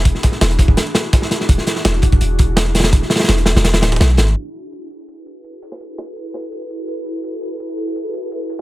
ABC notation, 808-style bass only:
X:1
M:4/4
L:1/16
Q:1/4=167
K:F#m
V:1 name="808-style bass" clef=bass
E,,, z3 E,,,3 E,,, z8 | E,,, z3 E,,,3 E,,, E,,,8 | E,,, z3 E,,,3 E,,,3 D,,,2 B,,,2 G,,,2 | z16 |
z16 | z16 |]